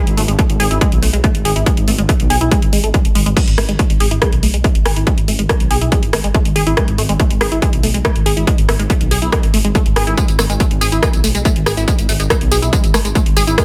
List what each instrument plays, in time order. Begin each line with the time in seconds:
0.07 detuned saw bass G#1, closed hi-hat
0.17 detuned saw bass G#1, synth arpeggio sound A3, open hi-hat
0.28 detuned saw bass G#1, synth arpeggio sound G#3, closed hi-hat
0.38 synth arpeggio sound A3, kick, closed hi-hat
0.50 detuned saw bass G#1, closed hi-hat
0.60 detuned saw bass G#1, synth arpeggio sound G#4, open hi-hat
0.71 detuned saw bass G#1, synth arpeggio sound E4, closed hi-hat
0.81 synth arpeggio sound G#3, kick, closed hi-hat
0.92 detuned saw bass B1, closed hi-hat
1.02 detuned saw bass B1, synth arpeggio sound A3, open hi-hat
1.13 detuned saw bass B1, synth arpeggio sound G#3, closed hi-hat
1.24 synth arpeggio sound A3, kick, closed hi-hat
1.35 detuned saw bass G#1, closed hi-hat
1.45 detuned saw bass G#1, synth arpeggio sound G#4, open hi-hat
1.56 detuned saw bass G#1, synth arpeggio sound E4, closed hi-hat
1.66 synth arpeggio sound G#3, kick, closed hi-hat
1.77 detuned saw bass G#1, closed hi-hat
1.88 detuned saw bass G#1, synth arpeggio sound A3, open hi-hat
1.98 detuned saw bass G#1, synth arpeggio sound G#3, closed hi-hat
2.09 synth arpeggio sound A3, kick, closed hi-hat
2.20 detuned saw bass B1, closed hi-hat
2.30 detuned saw bass B1, synth arpeggio sound G#4, open hi-hat
2.41 detuned saw bass B1, synth arpeggio sound E4, closed hi-hat
2.51 synth arpeggio sound G#3, kick, closed hi-hat
2.62 detuned saw bass G#1, closed hi-hat
2.73 detuned saw bass G#1, synth arpeggio sound G#3, open hi-hat
2.84 detuned saw bass G#1, synth arpeggio sound A3, closed hi-hat
2.94 synth arpeggio sound G#3, kick, closed hi-hat
3.05 detuned saw bass G#1, closed hi-hat
3.15 detuned saw bass G#1, synth arpeggio sound G#3, open hi-hat
3.26 detuned saw bass G#1, synth arpeggio sound G#3, closed hi-hat
3.36 synth arpeggio sound G#3, kick, closed hi-hat, crash
3.47 detuned saw bass G#1, closed hi-hat
3.58 detuned saw bass G#1, synth arpeggio sound A3, cross-stick, open hi-hat
3.69 detuned saw bass G#1, synth arpeggio sound G#3, closed hi-hat
3.79 synth arpeggio sound A3, kick, closed hi-hat
3.90 detuned saw bass G#1, closed hi-hat
4.00 detuned saw bass G#1, synth arpeggio sound G#4, open hi-hat
4.11 detuned saw bass G#1, synth arpeggio sound E4, closed hi-hat
4.22 synth arpeggio sound G#3, kick, cross-stick, closed hi-hat
4.32 detuned saw bass B1, closed hi-hat
4.43 detuned saw bass B1, synth arpeggio sound A3, open hi-hat
4.54 detuned saw bass B1, synth arpeggio sound G#3, closed hi-hat
4.64 synth arpeggio sound A3, kick, closed hi-hat
4.75 detuned saw bass G#1, closed hi-hat
4.85 detuned saw bass G#1, synth arpeggio sound G#4, cross-stick, open hi-hat
4.96 detuned saw bass G#1, synth arpeggio sound E4, closed hi-hat
5.07 synth arpeggio sound G#3, kick, closed hi-hat
5.18 detuned saw bass G#1, closed hi-hat
5.28 detuned saw bass G#1, synth arpeggio sound A3, open hi-hat
5.39 detuned saw bass G#1, synth arpeggio sound G#3, closed hi-hat
5.49 synth arpeggio sound A3, kick, cross-stick, closed hi-hat
5.60 detuned saw bass B1, closed hi-hat
5.71 detuned saw bass B1, synth arpeggio sound G#4, open hi-hat
5.81 detuned saw bass B1, synth arpeggio sound E4, closed hi-hat
5.92 synth arpeggio sound G#3, kick, closed hi-hat
6.03 detuned saw bass G#1, closed hi-hat
6.13 detuned saw bass G#1, synth arpeggio sound A3, cross-stick, open hi-hat
6.24 detuned saw bass G#1, synth arpeggio sound G#3, closed hi-hat
6.34 synth arpeggio sound A3, kick, closed hi-hat
6.45 detuned saw bass G#1, closed hi-hat
6.56 detuned saw bass G#1, synth arpeggio sound G#4, open hi-hat
6.67 detuned saw bass G#1, synth arpeggio sound E4, closed hi-hat
6.77 synth arpeggio sound G#3, kick, cross-stick, closed hi-hat
6.88 detuned saw bass G#1, closed hi-hat
6.98 detuned saw bass G#1, synth arpeggio sound A3, open hi-hat
7.09 detuned saw bass G#1, synth arpeggio sound G#3, closed hi-hat
7.19 synth arpeggio sound A3, kick, closed hi-hat
7.30 detuned saw bass G#1, closed hi-hat
7.41 detuned saw bass G#1, synth arpeggio sound G#4, cross-stick, open hi-hat
7.52 detuned saw bass G#1, synth arpeggio sound E4, closed hi-hat
7.62 synth arpeggio sound G#3, kick, closed hi-hat
7.73 detuned saw bass B1, closed hi-hat
7.83 detuned saw bass B1, synth arpeggio sound A3, open hi-hat
7.94 detuned saw bass B1, synth arpeggio sound G#3, closed hi-hat
8.05 synth arpeggio sound A3, kick, cross-stick, closed hi-hat
8.16 detuned saw bass G#1, closed hi-hat
8.26 detuned saw bass G#1, synth arpeggio sound G#4, open hi-hat
8.37 detuned saw bass G#1, synth arpeggio sound E4, closed hi-hat
8.47 synth arpeggio sound G#3, kick, closed hi-hat
8.58 detuned saw bass G#1, closed hi-hat
8.68 detuned saw bass G#1, synth arpeggio sound A3, cross-stick, open hi-hat
8.79 detuned saw bass G#1, synth arpeggio sound G#3, closed hi-hat
8.90 synth arpeggio sound A3, kick, closed hi-hat
9.01 detuned saw bass B1, closed hi-hat
9.11 detuned saw bass B1, synth arpeggio sound G#4, open hi-hat
9.22 detuned saw bass B1, synth arpeggio sound E4, closed hi-hat
9.32 synth arpeggio sound G#3, kick, cross-stick, closed hi-hat
9.43 detuned saw bass G#1, closed hi-hat
9.54 detuned saw bass G#1, synth arpeggio sound A3, open hi-hat
9.64 detuned saw bass G#1, synth arpeggio sound G#3, closed hi-hat
9.75 synth arpeggio sound A3, kick, closed hi-hat
9.86 detuned saw bass G#1, closed hi-hat
9.96 detuned saw bass G#1, synth arpeggio sound G#4, cross-stick, open hi-hat
10.07 detuned saw bass G#1, synth arpeggio sound E4, closed hi-hat
10.17 synth arpeggio sound G#3, kick, closed hi-hat, tambourine
10.28 detuned saw bass G#1, closed hi-hat, tambourine
10.39 detuned saw bass G#1, synth arpeggio sound A3, cross-stick, open hi-hat, tambourine
10.49 detuned saw bass G#1, synth arpeggio sound G#3, closed hi-hat, tambourine
10.60 synth arpeggio sound A3, kick, closed hi-hat, tambourine
10.71 detuned saw bass G#1, closed hi-hat
10.81 detuned saw bass G#1, synth arpeggio sound G#4, open hi-hat, tambourine
10.92 detuned saw bass G#1, synth arpeggio sound E4, closed hi-hat, tambourine
11.02 synth arpeggio sound G#3, kick, cross-stick, closed hi-hat, tambourine
11.13 detuned saw bass B1, closed hi-hat, tambourine
11.24 detuned saw bass B1, synth arpeggio sound A3, open hi-hat, tambourine
11.35 detuned saw bass B1, synth arpeggio sound G#3, closed hi-hat, tambourine
11.45 synth arpeggio sound A3, kick, closed hi-hat, tambourine
11.56 detuned saw bass G#1, closed hi-hat
11.66 detuned saw bass G#1, synth arpeggio sound G#4, cross-stick, open hi-hat, tambourine
11.77 detuned saw bass G#1, synth arpeggio sound E4, closed hi-hat, tambourine
11.88 synth arpeggio sound G#3, kick, closed hi-hat, tambourine
11.99 detuned saw bass G#1, closed hi-hat, tambourine
12.09 detuned saw bass G#1, synth arpeggio sound A3, open hi-hat, tambourine
12.20 detuned saw bass G#1, synth arpeggio sound G#3, closed hi-hat, tambourine
12.30 synth arpeggio sound A3, kick, cross-stick, closed hi-hat, tambourine
12.41 detuned saw bass B1, closed hi-hat
12.51 detuned saw bass B1, synth arpeggio sound G#4, open hi-hat, tambourine
12.62 detuned saw bass B1, synth arpeggio sound E4, closed hi-hat, tambourine
12.73 synth arpeggio sound G#3, kick, closed hi-hat, tambourine
12.84 detuned saw bass G#1, closed hi-hat, tambourine
12.94 detuned saw bass G#1, synth arpeggio sound A3, cross-stick, open hi-hat, tambourine
13.05 detuned saw bass G#1, synth arpeggio sound G#3, closed hi-hat, tambourine
13.15 synth arpeggio sound A3, kick, closed hi-hat, tambourine
13.26 detuned saw bass G#1, closed hi-hat
13.37 detuned saw bass G#1, synth arpeggio sound G#4, open hi-hat, tambourine
13.47 detuned saw bass G#1, synth arpeggio sound E4, closed hi-hat, tambourine
13.58 synth arpeggio sound G#3, kick, cross-stick, closed hi-hat, tambourine